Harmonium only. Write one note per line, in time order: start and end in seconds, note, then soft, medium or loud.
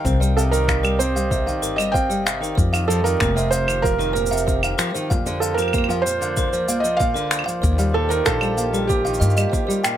0.00 6.10 C4 medium
0.00 1.05 D#4 medium
0.00 1.06 A#4 medium
0.00 1.06 F5 medium
0.00 1.05 G5 medium
0.35 6.11 G4 medium
0.35 3.59 D5 medium
0.35 3.58 D#5 medium
2.58 5.10 F3 medium
3.05 5.90 A#4 medium
5.12 9.97 A#3 medium
5.19 9.97 F4 medium
5.32 8.65 C5 medium
6.17 8.64 D5 medium
7.62 9.97 D#3 medium
7.91 9.97 G4 medium